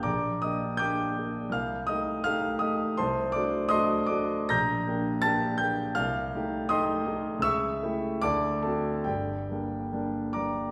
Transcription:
\new Staff \with { instrumentName = "Grand piano" } { \time 2/4 \key g \minor \tempo 4 = 81 << { <d'' bes'' d'''>8 <ees'' ees'''>8 <g'' d''' g'''>4 | <f'' f'''>8 <ees'' ees'''>8 <f'' f'''>8 <ees'' ees'''>8 | <c'' a'' c'''>8 <d'' d'''>8 <ees'' c''' ees'''>8 <d'' d'''>8 | <bes'' g''' bes'''>4 <a'' a'''>8 <g'' g'''>8 |
<f'' f'''>4 <ees'' c''' ees'''>8 r8 | <e'' cis''' e'''>4 <d'' a'' d'''>8 <a' a''>8 | <g' d'' g''>4 r8 <d'' bes'' d'''>8 | } \\ { bes,,8 <bes d' g'>8 <bes d' g'>8 <bes d' g'>8 | c,8 <a ees' g'>8 <a ees' g'>8 <a ees' g'>8 | c,8 <a d' fis'>8 <a d' fis'>8 <a d' fis'>8 | bes,,8 <bes d' g'>8 <bes d' g'>8 <bes d' g'>8 |
c,8 <a ees' g'>8 <a ees' g'>8 <a ees' g'>8 | cis,8 <a e' g'>8 d,8 <a c' fis'>8 | <g,, g,>8 <g bes d'>8 <g bes d'>8 <g bes d'>8 | } >> }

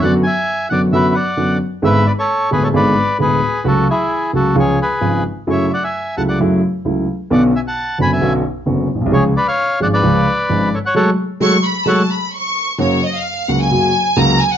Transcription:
<<
  \new Staff \with { instrumentName = "Violin section" } { \time 4/4 \key fis \minor \tempo 4 = 132 r1 | r1 | r1 | r1 |
r1 | r1 | r4 cis'''8 b''8 a''8 b''8 cis'''4 | \key fis \major cis''8 dis''16 eis''8. fis''16 gis''4~ gis''16 ais''8 gis''16 fis''16 | }
  \new Staff \with { instrumentName = "Bandoneon" } { \time 4/4 \key fis \minor <d'' fis''>8 <e'' gis''>4 <d'' fis''>8 <b' e''>8 <d'' fis''>4 r8 | <b' e''>8 <b' d''>16 <a' cis''>8. <gis' b'>16 <a' cis''>16 <b' d''>4 <gis' b'>4 | <fis' a'>8 <e' gis'>4 <fis' a'>8 <gis' cis''>8 <gis' b'>4 r8 | <cis'' e''>8 <d'' fis''>16 <e'' gis''>8. <fis'' a''>16 <d'' fis''>8 r4. r16 |
<d'' fis''>8 <e'' gis''>16 <fis'' a''>8. <gis'' b''>16 <e'' gis''>8 r4. r16 | <gis' cis''>8 <b' d''>16 <cis'' eis''>8. <d'' fis''>16 <b' d''>4.~ <b' d''>16 <a' cis''>16 <cis'' fis''>16 | <a' cis'' fis''>8 r8 <a' cis'' fis''>8 r8 <a' cis'' fis''>8 r4. | \key fis \major r1 | }
  \new Staff \with { instrumentName = "Grand piano" } { \clef bass \time 4/4 \key fis \minor <fis, d fis b fis'>8 r4 <fis, d fis b fis'>8 <fis, d fis b fis'>8 r8 <fis, d fis b fis'>8 r8 | <gis,, gis, d gis b gis'>8 r4 <d,, d, d gis b gis'>8 <gis,, gis, d gis b gis'>8 r8 <d,, d, d gis b gis'>8 r8 | <cis, cis fis a fis'>8 r4 <cis, cis fis a fis'>8 <cis, cis eis gis eis'>8 r8 <gis,, gis, cis eis gis eis'>8 r8 | <fis, cis fis a e'>8 r4 <cis, cis fis a e'>8 <fis, cis fis a e'>8 r8 <cis, cis fis a e'>8 r8 |
<b,, b, d b cis' fis'>8 r4 <fis,, fis, d b cis' fis'>8 <b,, b, d b cis' fis'>8 r8 <fis,, fis, d b cis' fis'>8 r32 ais,,32 b,,32 bis,,32 | <cis, cis eis gis cis' gis'>8 r4 <gis,, gis, eis gis cis' gis'>8 <cis, cis eis gis cis' gis'>8 r8 <gis,, gis, eis gis cis' gis'>8 r8 | <fis gis a>8 r8 <fis gis a>8 r8 <fis gis a>8 r4. | \key fis \major <fis, cis fis ais fis'>8 r4 <cis, cis fis ais fis'>8 <fis, cis fis ais fis'>8 r8 <cis, cis fis ais fis'>8 r8 | }
>>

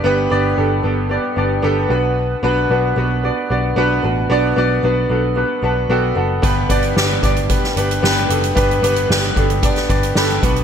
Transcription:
<<
  \new Staff \with { instrumentName = "Upright piano" } { \time 4/4 \key g \major \tempo 4 = 113 <b d' g' b'>8 <b d' g' d''>8 <b d' g' a'>8 <b d' g' a'>8 <b d' g' d''>8 <b d' g' d''>8 <b d' g' a'>8 <b d' fis' b'>8~ | <b d' fis' b'>8 <b d' fis' b'>8 <b d' fis' b'>8 <b d' fis' b'>8 <b d' fis' d''>8 <b d' fis' d''>8 <b d' fis' b'>8 <b d' fis' b'>8 | <b d' fis' d''>8 <b d' fis' d''>8 <b d' fis' b'>8 <b d' fis' a'>8 <b d' fis' b'>8 <b d' fis' b' a''>8 <b d' fis' a' g''>8 <b d' fis' a' fis''>8 | <b d' g' b'>8 <b d' g' d''>8 <b d' g' d''>8 <b d' g' d''>8 <b d' g' b'>8 <b d' g' b'>8 <b d' g' b'>8 <b d' g' a'>8 |
<b d' g' b'>8 <b d' g' b'>8 <b d' g' b'>8 <b d' g' a'>8 <b d' g' d''>8 <b d' g' d''>8 <b d' g' a' b''>8 <b d' fis' b' fis''>8 | }
  \new Staff \with { instrumentName = "Upright piano" } { \clef bass \time 4/4 \key g \major g,4. r2 b,8~ | b,4 r2 r8 b,8~ | b,4 r2. | g,4. r2 r8 |
g,4. r2 b,8 | }
  \new Staff \with { instrumentName = "Picked electric bass" } { \clef bass \time 4/4 \key g \major g,,8 g,,8 g,,8 g,,8. r16 g,,8 g,,8 b,,8~ | b,,8 b,,8 b,,8 b,,8. r16 b,,8 b,,8 a,,8 | b,,8 b,,8 b,,8 b,,8. r16 b,,8 b,,8 fis,,8 | g,,8 g,,8 g,,8 g,,8. r16 g,,8 g,,8 fis,,8 |
g,,8 g,,8 g,,8 g,,8. r16 g,,8 g,,8 b,,8 | }
  \new DrumStaff \with { instrumentName = "Drums" } \drummode { \time 4/4 r4 r4 r4 r4 | r4 r4 r4 r4 | r4 r4 r4 r4 | <hh bd>8 <hh bd>16 hh16 sn8 <hh bd>16 hh16 <hh bd>16 sn16 hh16 hh16 sn16 hh16 hh16 hh16 |
<hh bd>16 hh16 hh16 hh16 sn16 hh16 <hh bd>16 hh16 <hh bd>16 <hh sn>16 <hh bd>16 hh16 sn16 hh16 <hh bd>16 hh16 | }
>>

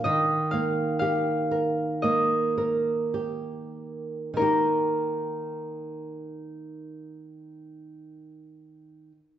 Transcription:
<<
  \new Staff \with { instrumentName = "Harp" } { \time 4/4 \key ees \major \tempo 4 = 48 ees''8 f''8 f''4 ees''4. r8 | bes'1 | }
  \new Staff \with { instrumentName = "Nylon-string guitar" } { \time 4/4 \key ees \major ees8 bes8 g'8 bes'8 bes8 bes'8 g'4 | <ees bes ees' g'>1 | }
>>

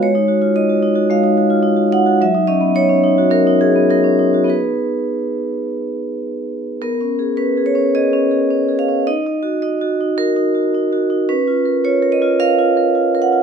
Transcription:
\new Staff \with { instrumentName = "Vibraphone" } { \time 4/4 \key b \lydian \tempo 4 = 108 << { cis''4 dis''4 eis''4. fis''8 | e''8 dis''8 cis''4 ais'8 gis'8 ais'4 | b'2. r4 | ais'4 b'8 cis''8 dis''4. eis''8 |
dis''4 dis''4 ais'2 | b'4 cis''8 dis''8 eis''4. fis''8 | } \\ { gis16 dis'16 fis'16 eis'16 dis'16 fis'16 dis'16 fis'16 gis16 dis'16 fis'16 eis'16 dis'16 fis'16 dis'16 fis'16 | fis16 dis'16 cis'16 b16 dis'16 cis'16 dis'16 fis'16 cis'16 dis'16 cis'16 b16 dis'16 cis'16 dis'16 fis'16 | <b dis' gis'>1 | \tuplet 3/2 { b8 cis'8 gis'8 cis'8 gis'8 cis'8 gis'8 cis'8 gis'8 cis'8 gis'8 cis'8 } |
\tuplet 3/2 { dis'8 dis'8 fis'8 dis'8 fis'8 dis'8 fis'8 dis'8 fis'8 dis'8 fis'8 dis'8 } | \tuplet 3/2 { cis'8 eis'8 ais'8 eis'8 ais'8 eis'8 ais'8 eis'8 ais'8 eis'8 ais'8 eis'8 } | } >> }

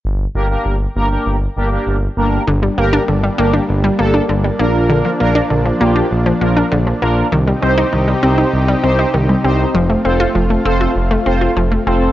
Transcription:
<<
  \new Staff \with { instrumentName = "Analog polysynth" } { \time 4/4 \key g \minor \tempo 4 = 99 r8 <bes d' g' bes'>16 <bes d' g' bes'>8 r16 <bes d' g' bes'>16 <bes d' g' bes'>8 r16 <bes d' g' bes'>16 <bes d' g' bes'>8 r16 <bes d' g' bes'>8 | r8 <bes d' g' bes'>8 r8 <bes d' g' bes'>8 r8 <bes d' g' a'>8 r8 <bes d' f' bes'>8~ | <bes d' f' bes'>16 r16 <bes d' f' bes'>8 r8 <bes d' f' g'>8 r8 <bes d' f' bes'>8 r8 <bes d' f' bes'>8 | r8 <c' ees' g' c''>8 r8 <c' ees' g' c''>8 r8 <c' ees' g' c''>8 r8 <c' ees' g' c''>8 |
r8 <c' f' a' c''>8 r8 <c' f' a' c''>8 r8 <c' f' a' c''>8 r8 <c' f' a' c''>8 | }
  \new Staff \with { instrumentName = "Analog synth pad" } { \time 4/4 \key g \minor << { r1 | <bes d'>1~ | <bes d'>1 | <c ees' g'>1 |
f'1 | } \\ { r1 | g2.~ g8 f8~ | f1 | c'1 |
a1 | } >> }
  \new Staff \with { instrumentName = "Synth arpeggio sound" } { \time 4/4 \key g \minor r1 | d16 g16 bes16 d'16 d16 g16 bes16 d'16 r16 g16 bes16 d'16 d16 g16 bes16 r16 | d16 f16 bes16 d'16 d16 f16 bes16 d'16 r16 f16 bes16 d'16 d16 f16 bes16 r16 | ees16 g16 c'16 ees'16 ees16 g16 c'16 ees'16 r16 g16 c'16 ees'16 ees16 g16 c'16 r16 |
f16 a16 c'16 f'16 f16 a16 c'16 f'16 r16 a16 c'16 f'16 f16 a16 c'16 r16 | }
  \new Staff \with { instrumentName = "Analog synth bass" } { \clef bass \time 4/4 \key g \minor g,,8 g,,8 g,,8 g,,8 g,,8 g,,8 g,,8 g,,8 | g,,8 g,,8 g,,8 g,,8 g,,8 g,,8 g,,8 bes,,8~ | bes,,8 bes,,8 bes,,8 bes,,8 bes,,8 bes,,8 bes,,8 bes,,8 | c,8 c,8 c,8 c,8 c,8 c,8 c,8 c,8 |
f,,8 f,,8 f,,8 f,,8 f,,8 f,,8 f,,8 f,,8 | }
>>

